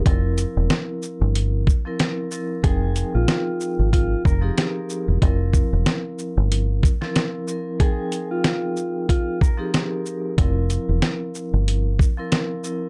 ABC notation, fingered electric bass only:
X:1
M:4/4
L:1/16
Q:"Swing 16ths" 1/4=93
K:Fm
V:1 name="Fingered electric bass" clef=bass
F,,,3 =E,,, z3 G,,,4 z4 z | F,,,3 B,,, z3 A,,,3 F,,,2 z3 =E,,, | F,,,3 =E,,, z3 G,,,4 z4 z | z16 |
F,,,3 =E,,, z3 G,,,4 z4 z |]